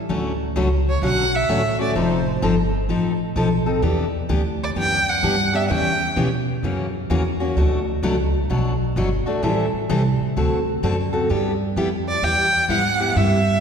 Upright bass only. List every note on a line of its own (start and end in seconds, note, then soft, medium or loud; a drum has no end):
0.09 0.54 D2 medium
0.56 1.01 C#2 medium
1.02 1.47 B1 medium
1.49 1.94 A1 medium
1.96 2.41 F1 loud
2.42 2.88 G1 medium
2.89 3.34 A1 medium
3.36 3.81 B1 medium
3.82 4.28 E2 medium
4.29 4.75 D2 loud
4.76 5.21 F#2 medium
5.23 5.68 G2 medium
5.70 6.15 E2 loud
6.16 6.62 B2 medium
6.63 7.08 F#2 medium
7.10 7.55 E2 loud
7.56 8.02 D2 medium
8.03 8.48 C#2 medium
8.49 8.95 B1 medium
8.96 9.24 G1 medium
9.27 muted upright bass stroke soft
9.43 9.71 A1 loud
9.73 muted upright bass stroke soft
9.89 10.17 C2 loud
10.20 muted upright bass stroke soft
10.37 10.82 D2 medium
10.83 11.28 F#2 medium
11.30 11.75 G2 medium
11.76 12.21 F2 medium
12.22 12.68 E2 medium
12.69 13.14 G#2 medium
13.16 13.60 G2 loud